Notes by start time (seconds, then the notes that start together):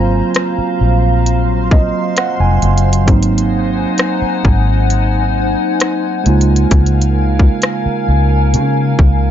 Already playing: G#1 F#3 A#3 C4 F4 C5 F5 A#5
0.35 cross-stick, closed hi-hat
0.58 muted fingered electric bass stroke
0.81 A#1
1.25 C6, closed hi-hat
1.71 D#5, kick
2.17 F#5, cross-stick, closed hi-hat
2.40 F1 G#5
2.62 F#1, closed hi-hat
2.78 closed hi-hat
2.93 closed hi-hat
3.06 G#1 F#3 A#3 C4 D#4 C5 F#5 G#5, kick, closed hi-hat
3.11 D#4
3.23 closed hi-hat
3.38 closed hi-hat
3.98 cross-stick, closed hi-hat
4.22 muted fingered electric bass stroke
4.45 G#1, kick
4.90 closed hi-hat
5.80 cross-stick, closed hi-hat
6.24 C#2 C#3 G#3 A#3 D#4 A#4 F5, closed hi-hat
6.29 F4
6.41 closed hi-hat
6.56 closed hi-hat
6.71 C#2, kick, closed hi-hat
6.86 closed hi-hat
7.02 closed hi-hat
7.39 kick
7.62 cross-stick, closed hi-hat
7.86 muted fingered electric bass stroke
8.08 C#2
8.54 C#3, closed hi-hat
8.99 C#2, kick